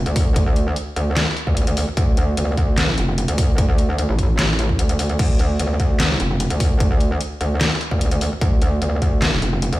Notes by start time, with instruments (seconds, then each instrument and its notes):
0.06 wobble bass D2, closed hi-hat
0.16 kick, open hi-hat
0.36 kick, closed hi-hat
0.46 wobble bass D2
0.56 closed hi-hat
0.76 closed hi-hat
0.96 wobble bass D2, closed hi-hat
1.17 snare, clap, closed hi-hat
1.37 closed hi-hat
1.47 wobble bass D2, kick
1.57 closed hi-hat
1.67 wobble bass D2, closed hi-hat
1.77 open hi-hat
1.97 wobble bass D2, kick, closed hi-hat
2.17 closed hi-hat
2.37 wobble bass D2, closed hi-hat
2.57 wobble bass D2, kick, closed hi-hat
2.78 snare, clap, closed hi-hat
2.98 wobble bass F1, closed hi-hat
3.18 closed hi-hat
3.28 wobble bass D2, closed hi-hat
3.38 kick, open hi-hat
3.58 kick, closed hi-hat
3.68 wobble bass D2
3.78 closed hi-hat
3.98 wobble bass D2, closed hi-hat
4.09 wobble bass A1
4.19 kick, closed hi-hat
4.39 wobble bass A1, snare, clap, closed hi-hat
4.59 closed hi-hat
4.69 kick
4.79 wobble bass D2, closed hi-hat
4.89 closed hi-hat
4.99 wobble bass D2, open hi-hat
5.09 closed hi-hat
5.19 wobble bass D2, kick, closed hi-hat, crash
5.39 closed hi-hat
5.59 wobble bass D2, closed hi-hat
5.80 wobble bass D2, kick, closed hi-hat
6.00 snare, clap, closed hi-hat
6.20 wobble bass F1, closed hi-hat
6.40 closed hi-hat
6.50 wobble bass D2, closed hi-hat
6.60 kick, open hi-hat
6.80 kick, closed hi-hat
6.91 wobble bass D2
7.00 closed hi-hat
7.21 closed hi-hat
7.41 wobble bass D2, closed hi-hat
7.61 snare, clap, closed hi-hat
7.81 closed hi-hat
7.91 wobble bass D2, kick
8.01 closed hi-hat
8.11 wobble bass D2, closed hi-hat
8.21 open hi-hat
8.41 wobble bass D2, kick, closed hi-hat
8.62 closed hi-hat
8.82 wobble bass D2, closed hi-hat
9.02 wobble bass D2, kick, closed hi-hat
9.22 snare, clap, closed hi-hat
9.42 wobble bass F1, closed hi-hat
9.62 closed hi-hat
9.73 wobble bass D2, closed hi-hat